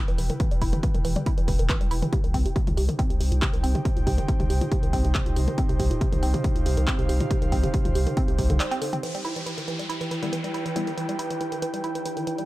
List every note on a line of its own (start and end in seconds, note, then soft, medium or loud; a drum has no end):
0.00 2.13 E4 medium
0.00 2.13 G4 medium
0.00 2.13 B4 medium
0.00 2.13 G5 medium
0.08 0.18 E1 medium
0.08 0.12 E3 medium
0.08 closed hi-hat medium
0.18 0.30 E1 loud
0.18 0.23 E3 medium
0.18 open hi-hat loud
0.30 0.34 D#3 medium
0.30 closed hi-hat medium
0.30 mid tom medium
0.40 0.46 E3 loud
0.40 kick loud
0.40 closed hi-hat medium
0.51 0.61 E1 medium
0.51 0.55 G3 medium
0.51 closed hi-hat medium
0.62 0.73 E1 loud
0.62 0.68 E4 loud
0.62 kick medium
0.62 open hi-hat loud
0.73 0.77 E3 medium
0.73 closed hi-hat medium
0.73 mid tom medium
0.83 0.87 E3 medium
0.83 kick loud
0.83 closed hi-hat medium
0.95 1.04 E1 medium
0.95 0.98 D#3 medium
0.95 closed hi-hat medium
0.95 mid tom loud
1.05 1.16 E1 loud
1.05 1.11 E3 loud
1.05 open hi-hat medium
1.16 1.20 G3 medium
1.16 closed hi-hat medium
1.16 mid tom medium
1.26 1.33 E4 loud
1.26 kick loud
1.26 closed hi-hat medium
1.38 1.47 E1 medium
1.38 1.42 E3 medium
1.38 closed hi-hat medium
1.48 1.59 E1 loud
1.48 1.52 E3 medium
1.48 kick medium
1.48 open hi-hat loud
1.59 1.69 E1 medium
1.59 1.63 D#3 medium
1.59 closed hi-hat medium
1.69 1.76 E3 loud
1.69 kick loud
1.69 clap loud
1.69 closed hi-hat medium
1.81 1.91 E1 medium
1.81 1.85 G3 medium
1.81 closed hi-hat medium
1.91 2.02 E1 loud
1.91 1.98 E4 loud
1.91 open hi-hat loud
2.02 2.06 E3 medium
2.02 closed hi-hat medium
2.02 mid tom medium
2.13 2.19 C3 loud
2.13 9.03 D#4 medium
2.13 kick loud
2.13 closed hi-hat medium
2.21 2.34 C2 medium
2.21 2.28 D#3 medium
2.21 12.45 G4 medium
2.21 closed hi-hat medium
2.34 2.45 C2 medium
2.34 2.41 C4 loud
2.34 kick medium
2.34 open hi-hat loud
2.39 9.03 C5 medium
2.46 2.49 C3 medium
2.46 closed hi-hat soft
2.56 2.60 C3 medium
2.56 kick loud
2.56 closed hi-hat medium
2.67 2.77 C2 medium
2.67 2.71 A#2 medium
2.67 closed hi-hat medium
2.67 mid tom loud
2.72 5.97 G5 medium
2.77 2.89 C2 loud
2.77 2.84 C3 loud
2.77 open hi-hat medium
2.89 2.93 D#3 medium
2.89 closed hi-hat medium
2.89 mid tom medium
2.99 3.05 C4 loud
2.99 kick loud
2.99 closed hi-hat medium
3.10 3.20 C2 medium
3.10 3.14 C3 medium
3.10 closed hi-hat medium
3.20 3.31 C2 loud
3.20 3.25 C3 medium
3.20 open hi-hat loud
3.32 3.42 C2 medium
3.32 3.36 A#2 medium
3.32 closed hi-hat soft
3.42 3.49 C3 loud
3.42 kick loud
3.42 clap loud
3.42 closed hi-hat medium
3.53 3.63 C2 medium
3.53 3.57 D#3 medium
3.53 closed hi-hat soft
3.63 3.75 C2 loud
3.63 3.70 C4 loud
3.63 open hi-hat medium
3.75 3.79 C3 medium
3.75 closed hi-hat soft
3.75 mid tom medium
3.85 3.89 C3 medium
3.85 kick loud
3.85 closed hi-hat medium
3.97 4.06 C2 medium
3.97 4.00 A#2 medium
3.97 closed hi-hat medium
4.07 4.18 C2 loud
4.07 4.13 C3 loud
4.07 kick medium
4.07 open hi-hat loud
4.18 4.22 D#3 medium
4.18 closed hi-hat soft
4.18 mid tom medium
4.28 4.35 C4 loud
4.28 kick loud
4.28 closed hi-hat medium
4.40 4.49 C2 medium
4.40 4.44 C3 medium
4.40 closed hi-hat soft
4.40 mid tom loud
4.50 4.61 C2 loud
4.50 4.54 C3 medium
4.50 open hi-hat medium
4.61 4.65 A#2 medium
4.61 closed hi-hat medium
4.61 mid tom medium
4.72 4.78 C3 loud
4.72 kick loud
4.72 closed hi-hat medium
4.83 4.93 C2 medium
4.83 4.87 D#3 medium
4.83 closed hi-hat medium
4.93 5.04 C2 loud
4.93 5.00 C4 loud
4.93 kick medium
4.93 open hi-hat loud
5.04 5.15 C2 medium
5.04 5.08 C3 medium
5.04 closed hi-hat medium
5.15 5.19 C3 medium
5.15 kick loud
5.15 clap loud
5.15 closed hi-hat medium
5.26 5.36 C2 medium
5.26 5.30 A#2 medium
5.26 closed hi-hat soft
5.36 5.47 C2 loud
5.36 5.43 C3 loud
5.36 open hi-hat medium
5.48 5.52 D#3 medium
5.48 closed hi-hat soft
5.48 mid tom medium
5.58 5.64 C4 loud
5.58 kick loud
5.58 closed hi-hat medium
5.69 5.79 C2 medium
5.69 5.73 C3 medium
5.69 closed hi-hat medium
5.79 5.91 C2 loud
5.79 5.84 C3 medium
5.79 kick medium
5.79 open hi-hat loud
5.85 9.03 F5 medium
5.91 5.95 A#2 medium
5.91 closed hi-hat medium
6.01 6.08 C3 loud
6.01 kick loud
6.01 closed hi-hat medium
6.12 6.22 C2 medium
6.12 6.16 D#3 medium
6.12 closed hi-hat medium
6.12 mid tom medium
6.23 6.34 C2 loud
6.23 6.29 C4 loud
6.23 open hi-hat medium
6.34 6.38 C3 medium
6.34 closed hi-hat medium
6.34 mid tom medium
6.44 6.49 C3 medium
6.44 kick loud
6.44 closed hi-hat medium
6.56 6.65 C2 medium
6.56 6.59 A#2 medium
6.56 closed hi-hat medium
6.66 6.77 C2 loud
6.66 6.72 C3 loud
6.66 open hi-hat loud
6.77 6.87 C2 medium
6.77 6.81 D#3 medium
6.77 closed hi-hat medium
6.87 6.94 C4 loud
6.87 kick loud
6.87 clap loud
6.87 closed hi-hat medium
6.99 7.08 C2 medium
6.99 7.03 C3 medium
6.99 closed hi-hat medium
7.09 7.20 C2 loud
7.09 7.13 C3 medium
7.09 open hi-hat medium
7.20 7.24 A#2 medium
7.20 closed hi-hat medium
7.20 mid tom medium
7.31 7.37 C3 loud
7.31 kick loud
7.31 closed hi-hat loud
7.42 7.52 C2 medium
7.42 7.46 D#3 medium
7.42 closed hi-hat medium
7.52 7.63 C2 loud
7.52 7.59 C4 loud
7.52 kick medium
7.52 open hi-hat loud
7.63 7.67 C3 medium
7.63 closed hi-hat medium
7.63 mid tom medium
7.74 7.78 C3 medium
7.74 kick loud
7.74 closed hi-hat medium
7.85 7.95 C2 medium
7.85 7.89 A#2 medium
7.85 closed hi-hat medium
7.85 mid tom medium
7.95 8.06 C2 loud
7.95 8.02 C3 loud
7.95 open hi-hat medium
8.07 8.11 D#3 medium
8.07 closed hi-hat medium
8.07 mid tom medium
8.17 8.23 C4 loud
8.17 kick loud
8.17 closed hi-hat medium
8.28 8.38 C2 medium
8.28 8.32 C3 medium
8.28 closed hi-hat medium
8.38 8.49 C2 medium
8.38 8.43 C3 medium
8.38 kick medium
8.38 open hi-hat loud
8.50 8.60 C2 medium
8.50 8.56 D3 medium
8.50 closed hi-hat medium
8.50 mid tom medium
8.60 8.67 G3 medium
8.60 clap loud
8.60 closed hi-hat loud
8.71 8.74 C4 loud
8.71 closed hi-hat medium
8.82 8.88 D3 loud
8.82 open hi-hat medium
8.93 8.97 C4 loud
8.93 closed hi-hat medium
8.93 mid tom medium
9.03 9.10 E3 loud
9.03 12.45 E3 medium
9.03 12.45 E4 medium
9.03 closed hi-hat medium
9.03 downlifter medium
9.15 9.18 G3 medium
9.15 closed hi-hat medium
9.25 9.31 E4 loud
9.25 closed hi-hat medium
9.36 9.40 E3 medium
9.36 closed hi-hat medium
9.46 9.51 E3 medium
9.46 12.45 B4 medium
9.46 closed hi-hat medium
9.50 12.45 G5 medium
9.58 9.62 D#3 medium
9.58 closed hi-hat medium
9.68 9.74 E3 loud
9.68 closed hi-hat medium
9.79 9.83 G3 medium
9.79 closed hi-hat medium
9.89 9.96 E4 loud
9.89 closed hi-hat medium
10.01 10.05 E3 medium
10.01 closed hi-hat medium
10.11 10.15 E3 medium
10.11 closed hi-hat medium
10.22 10.26 D#3 medium
10.22 10.34 G3 loud
10.22 10.34 B3 medium
10.22 10.33 E4 loud
10.22 closed hi-hat medium
10.33 10.39 E3 loud
10.33 closed hi-hat medium
10.44 10.48 G3 medium
10.44 closed hi-hat medium
10.54 10.61 E4 loud
10.54 closed hi-hat medium
10.66 10.70 E3 medium
10.66 closed hi-hat medium
10.76 10.80 E3 medium
10.76 10.88 G3 medium
10.76 10.88 B3 medium
10.76 10.88 E4 loud
10.76 closed hi-hat medium
10.87 10.91 D#3 medium
10.87 closed hi-hat medium
10.97 11.04 E3 loud
10.97 closed hi-hat medium
11.09 11.13 G3 medium
11.09 closed hi-hat medium
11.19 11.26 E4 loud
11.19 closed hi-hat medium
11.30 11.34 E3 medium
11.30 closed hi-hat medium
11.41 11.45 E3 medium
11.41 closed hi-hat medium
11.52 11.56 D#3 medium
11.52 closed hi-hat medium
11.62 11.69 E3 loud
11.62 closed hi-hat medium
11.74 11.78 G3 medium
11.74 closed hi-hat medium
11.84 11.90 E4 loud
11.84 closed hi-hat medium
11.95 11.99 E3 medium
11.95 closed hi-hat medium
12.05 12.10 E3 medium
12.05 closed hi-hat medium
12.17 12.21 D#3 medium
12.17 closed hi-hat medium
12.27 12.34 E3 loud
12.27 closed hi-hat medium
12.38 12.42 G3 medium
12.38 closed hi-hat medium